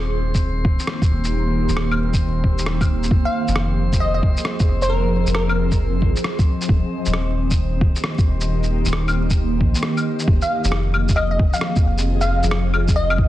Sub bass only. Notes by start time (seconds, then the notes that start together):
Already playing: D#1
1.09 D#1
1.69 D#1
2.44 D#1
3.11 F1
3.48 F1
4.67 F1
5.26 F1
6.02 G#1
6.69 D#1
7.06 D#1
8.26 D#1
8.86 D#1
9.61 A#1
10.27 F1
10.64 F1
11.84 F1
12.43 F1
13.18 G#1